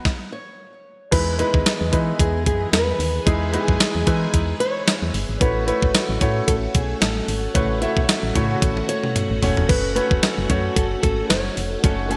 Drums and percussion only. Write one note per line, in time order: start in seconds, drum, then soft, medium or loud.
0.05 kick loud
0.05 snare medium
1.12 kick loud
1.12 closed hi-hat medium
1.12 crash medium
1.39 closed hi-hat medium
1.54 kick medium
1.66 snare loud
1.66 closed hi-hat medium
1.66 tambourine medium
1.93 kick medium
1.93 closed hi-hat medium
2.19 kick medium
2.19 closed hi-hat loud
2.46 kick medium
2.46 closed hi-hat medium
2.73 snare loud
2.73 closed hi-hat medium
2.73 tambourine medium
3.00 open hi-hat medium
3.27 kick loud
3.27 closed hi-hat medium
3.54 closed hi-hat medium
3.68 kick medium
3.80 snare loud
3.80 closed hi-hat medium
3.80 tambourine medium
4.07 kick medium
4.07 closed hi-hat medium
4.34 kick medium
4.34 closed hi-hat loud
4.60 closed hi-hat medium
4.87 snare loud
4.87 closed hi-hat medium
4.87 tambourine medium
5.14 open hi-hat medium
5.41 kick loud
5.41 closed hi-hat medium
5.68 closed hi-hat medium
5.82 kick medium
5.94 snare loud
5.94 closed hi-hat medium
5.94 tambourine medium
6.21 kick medium
6.21 closed hi-hat medium
6.48 kick medium
6.48 closed hi-hat loud
6.75 kick medium
6.75 closed hi-hat medium
7.02 snare loud
7.02 closed hi-hat medium
7.02 tambourine medium
7.28 open hi-hat medium
7.55 kick loud
7.55 closed hi-hat medium
7.82 closed hi-hat medium
7.97 kick medium
8.09 snare loud
8.09 closed hi-hat medium
8.09 tambourine medium
8.35 kick medium
8.35 closed hi-hat medium
8.62 kick medium
8.62 closed hi-hat loud
8.62 high tom medium
8.77 high tom medium
8.89 closed hi-hat medium
9.04 mid tom medium
9.16 closed hi-hat medium
9.16 mid tom medium
9.43 floor tom medium
9.43 open hi-hat medium
9.57 floor tom medium
9.69 kick loud
9.69 crash medium
9.96 closed hi-hat medium
10.11 kick medium
10.23 snare loud
10.23 closed hi-hat medium
10.23 tambourine medium
10.50 kick medium
10.50 closed hi-hat medium
10.76 kick medium
10.76 closed hi-hat loud
11.03 kick loud
11.03 closed hi-hat medium
11.30 snare loud
11.30 closed hi-hat medium
11.30 tambourine medium
11.57 open hi-hat medium
11.84 kick loud
11.84 closed hi-hat medium
12.11 closed hi-hat medium